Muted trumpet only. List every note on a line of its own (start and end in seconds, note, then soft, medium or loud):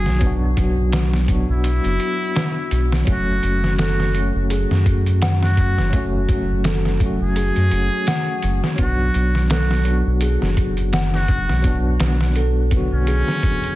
0.00 0.34 G#4 medium
1.51 2.96 E4 loud
3.10 3.74 F#4 loud
3.81 4.30 F#4 medium
5.44 6.06 F#4 loud
7.23 8.68 G#4 loud
8.81 9.45 F#4 loud
9.52 10.01 F#4 loud
11.15 11.78 F#4 loud
12.93 13.75 C#4 loud